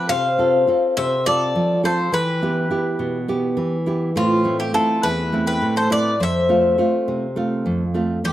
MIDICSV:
0, 0, Header, 1, 4, 480
1, 0, Start_track
1, 0, Tempo, 580833
1, 89, Time_signature, 7, 3, 24, 8
1, 6881, End_track
2, 0, Start_track
2, 0, Title_t, "Bouzouki"
2, 0, Program_c, 0, 25
2, 76, Note_on_c, 0, 77, 107
2, 797, Note_off_c, 0, 77, 0
2, 801, Note_on_c, 0, 76, 94
2, 1027, Note_off_c, 0, 76, 0
2, 1044, Note_on_c, 0, 74, 93
2, 1492, Note_off_c, 0, 74, 0
2, 1529, Note_on_c, 0, 72, 84
2, 1762, Note_off_c, 0, 72, 0
2, 1765, Note_on_c, 0, 71, 90
2, 2693, Note_off_c, 0, 71, 0
2, 3446, Note_on_c, 0, 65, 77
2, 3796, Note_off_c, 0, 65, 0
2, 3799, Note_on_c, 0, 67, 66
2, 3914, Note_off_c, 0, 67, 0
2, 3919, Note_on_c, 0, 69, 83
2, 4160, Note_on_c, 0, 71, 94
2, 4170, Note_off_c, 0, 69, 0
2, 4498, Note_off_c, 0, 71, 0
2, 4523, Note_on_c, 0, 71, 82
2, 4749, Note_off_c, 0, 71, 0
2, 4768, Note_on_c, 0, 72, 81
2, 4880, Note_off_c, 0, 72, 0
2, 4894, Note_on_c, 0, 74, 93
2, 5138, Note_off_c, 0, 74, 0
2, 5148, Note_on_c, 0, 76, 89
2, 6547, Note_off_c, 0, 76, 0
2, 6817, Note_on_c, 0, 67, 77
2, 6881, Note_off_c, 0, 67, 0
2, 6881, End_track
3, 0, Start_track
3, 0, Title_t, "Bouzouki"
3, 0, Program_c, 1, 25
3, 92, Note_on_c, 1, 72, 90
3, 777, Note_off_c, 1, 72, 0
3, 812, Note_on_c, 1, 72, 79
3, 1033, Note_off_c, 1, 72, 0
3, 1050, Note_on_c, 1, 69, 79
3, 1496, Note_off_c, 1, 69, 0
3, 1537, Note_on_c, 1, 69, 71
3, 1755, Note_off_c, 1, 69, 0
3, 1771, Note_on_c, 1, 67, 73
3, 2696, Note_off_c, 1, 67, 0
3, 3453, Note_on_c, 1, 60, 68
3, 3785, Note_off_c, 1, 60, 0
3, 3796, Note_on_c, 1, 64, 64
3, 3913, Note_off_c, 1, 64, 0
3, 3920, Note_on_c, 1, 65, 69
3, 4146, Note_off_c, 1, 65, 0
3, 4166, Note_on_c, 1, 64, 72
3, 4502, Note_off_c, 1, 64, 0
3, 4517, Note_on_c, 1, 67, 74
3, 4745, Note_off_c, 1, 67, 0
3, 4762, Note_on_c, 1, 69, 78
3, 4874, Note_off_c, 1, 69, 0
3, 4877, Note_on_c, 1, 71, 73
3, 5106, Note_off_c, 1, 71, 0
3, 5127, Note_on_c, 1, 72, 85
3, 6537, Note_off_c, 1, 72, 0
3, 6881, End_track
4, 0, Start_track
4, 0, Title_t, "Nylon-string guitar"
4, 0, Program_c, 2, 24
4, 0, Note_on_c, 2, 60, 47
4, 0, Note_on_c, 2, 65, 42
4, 0, Note_on_c, 2, 69, 51
4, 76, Note_on_c, 2, 48, 66
4, 227, Note_off_c, 2, 60, 0
4, 233, Note_off_c, 2, 69, 0
4, 234, Note_off_c, 2, 65, 0
4, 316, Note_on_c, 2, 60, 45
4, 322, Note_on_c, 2, 65, 44
4, 324, Note_on_c, 2, 69, 50
4, 547, Note_off_c, 2, 48, 0
4, 547, Note_off_c, 2, 60, 0
4, 550, Note_off_c, 2, 65, 0
4, 556, Note_off_c, 2, 69, 0
4, 556, Note_on_c, 2, 60, 46
4, 563, Note_on_c, 2, 65, 38
4, 566, Note_on_c, 2, 69, 51
4, 806, Note_on_c, 2, 48, 66
4, 945, Note_off_c, 2, 60, 0
4, 947, Note_off_c, 2, 65, 0
4, 951, Note_off_c, 2, 69, 0
4, 1043, Note_on_c, 2, 60, 49
4, 1050, Note_on_c, 2, 65, 49
4, 1051, Note_on_c, 2, 69, 52
4, 1272, Note_off_c, 2, 48, 0
4, 1285, Note_on_c, 2, 53, 61
4, 1430, Note_off_c, 2, 60, 0
4, 1431, Note_off_c, 2, 69, 0
4, 1432, Note_off_c, 2, 65, 0
4, 1515, Note_on_c, 2, 60, 46
4, 1519, Note_on_c, 2, 65, 44
4, 1519, Note_on_c, 2, 69, 54
4, 1712, Note_off_c, 2, 60, 0
4, 1713, Note_off_c, 2, 65, 0
4, 1714, Note_off_c, 2, 69, 0
4, 1751, Note_off_c, 2, 53, 0
4, 1754, Note_on_c, 2, 52, 63
4, 1999, Note_on_c, 2, 59, 47
4, 2004, Note_on_c, 2, 64, 43
4, 2007, Note_on_c, 2, 67, 55
4, 2224, Note_off_c, 2, 64, 0
4, 2226, Note_off_c, 2, 52, 0
4, 2227, Note_off_c, 2, 59, 0
4, 2232, Note_off_c, 2, 67, 0
4, 2236, Note_on_c, 2, 59, 46
4, 2236, Note_on_c, 2, 64, 44
4, 2242, Note_on_c, 2, 67, 56
4, 2472, Note_on_c, 2, 47, 65
4, 2623, Note_off_c, 2, 64, 0
4, 2625, Note_off_c, 2, 59, 0
4, 2628, Note_off_c, 2, 67, 0
4, 2713, Note_on_c, 2, 59, 53
4, 2719, Note_on_c, 2, 64, 46
4, 2719, Note_on_c, 2, 67, 60
4, 2945, Note_off_c, 2, 47, 0
4, 2948, Note_on_c, 2, 52, 62
4, 3103, Note_off_c, 2, 59, 0
4, 3105, Note_off_c, 2, 64, 0
4, 3106, Note_off_c, 2, 67, 0
4, 3192, Note_on_c, 2, 59, 53
4, 3196, Note_on_c, 2, 64, 45
4, 3202, Note_on_c, 2, 67, 49
4, 3390, Note_off_c, 2, 59, 0
4, 3393, Note_off_c, 2, 64, 0
4, 3394, Note_off_c, 2, 67, 0
4, 3423, Note_off_c, 2, 52, 0
4, 3435, Note_on_c, 2, 45, 70
4, 3669, Note_on_c, 2, 57, 45
4, 3675, Note_on_c, 2, 60, 44
4, 3679, Note_on_c, 2, 64, 54
4, 3904, Note_off_c, 2, 57, 0
4, 3906, Note_off_c, 2, 45, 0
4, 3907, Note_off_c, 2, 60, 0
4, 3912, Note_off_c, 2, 64, 0
4, 3914, Note_on_c, 2, 57, 49
4, 3920, Note_on_c, 2, 60, 45
4, 3922, Note_on_c, 2, 64, 51
4, 4162, Note_on_c, 2, 40, 67
4, 4304, Note_off_c, 2, 57, 0
4, 4305, Note_off_c, 2, 60, 0
4, 4308, Note_off_c, 2, 64, 0
4, 4400, Note_on_c, 2, 57, 47
4, 4405, Note_on_c, 2, 60, 48
4, 4411, Note_on_c, 2, 64, 50
4, 4630, Note_off_c, 2, 40, 0
4, 4643, Note_on_c, 2, 45, 65
4, 4789, Note_off_c, 2, 57, 0
4, 4789, Note_off_c, 2, 60, 0
4, 4790, Note_off_c, 2, 64, 0
4, 4874, Note_on_c, 2, 57, 51
4, 4876, Note_on_c, 2, 60, 43
4, 4882, Note_on_c, 2, 64, 51
4, 5072, Note_off_c, 2, 57, 0
4, 5072, Note_off_c, 2, 60, 0
4, 5074, Note_off_c, 2, 64, 0
4, 5111, Note_off_c, 2, 45, 0
4, 5124, Note_on_c, 2, 41, 64
4, 5361, Note_on_c, 2, 57, 50
4, 5363, Note_on_c, 2, 60, 41
4, 5370, Note_on_c, 2, 65, 51
4, 5592, Note_off_c, 2, 41, 0
4, 5592, Note_off_c, 2, 57, 0
4, 5597, Note_off_c, 2, 60, 0
4, 5600, Note_off_c, 2, 65, 0
4, 5602, Note_on_c, 2, 57, 47
4, 5607, Note_on_c, 2, 60, 45
4, 5610, Note_on_c, 2, 65, 51
4, 5850, Note_on_c, 2, 48, 60
4, 5989, Note_off_c, 2, 57, 0
4, 5992, Note_off_c, 2, 60, 0
4, 5994, Note_off_c, 2, 65, 0
4, 6082, Note_on_c, 2, 57, 53
4, 6086, Note_on_c, 2, 60, 43
4, 6092, Note_on_c, 2, 65, 55
4, 6316, Note_off_c, 2, 48, 0
4, 6327, Note_on_c, 2, 41, 61
4, 6471, Note_off_c, 2, 57, 0
4, 6471, Note_off_c, 2, 60, 0
4, 6473, Note_off_c, 2, 65, 0
4, 6565, Note_on_c, 2, 57, 51
4, 6568, Note_on_c, 2, 60, 42
4, 6571, Note_on_c, 2, 65, 49
4, 6759, Note_off_c, 2, 57, 0
4, 6761, Note_off_c, 2, 60, 0
4, 6763, Note_off_c, 2, 65, 0
4, 6795, Note_off_c, 2, 41, 0
4, 6811, Note_on_c, 2, 40, 70
4, 6881, Note_off_c, 2, 40, 0
4, 6881, End_track
0, 0, End_of_file